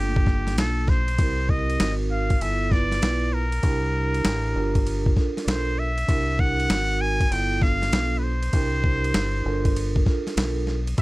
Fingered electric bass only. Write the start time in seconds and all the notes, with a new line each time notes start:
Already playing: G1
0.58 B1
1.19 C2
1.80 G#1
2.41 G1
3.02 B1
3.63 C2
4.25 A1
4.56 G1
5.47 B1
6.09 C2
6.70 G#1
7.31 G1
7.92 B1
8.53 C2
9.15 G1
9.45 G1
10.37 B1
10.98 C2